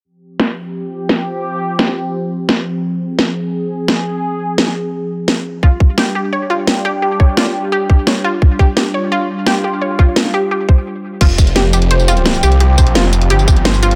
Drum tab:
CC |----------------|----------------|----------------|----------------|
HH |----------------|----------------|----------------|----------------|
TB |----------------|----------------|----------------|----------------|
SD |----o-------o---|----oo------o---|----o-------o---|----oo------o---|
BD |----------------|----------------|----------------|----------------|

CC |----------------|----------------|----------------|----------------|
HH |----------------|----------------|----------------|----------------|
TB |----------------|----------------|----------------|----------------|
SD |----o-------o---|----oo------o---|----o-------o---|----oo----------|
BD |o-o-------------|--o-------o-----|o-o-------------|--o-------o-----|

CC |x---------------|----------------|
HH |x-xxx-xxx-xxx-xx|x-xxx-xxx-xxx-xx|
TB |--x---x--xx--xx-|--x---x--xx--xx-|
SD |----o-------o---|----oo------o---|
BD |o-o-------------|--o-------o-----|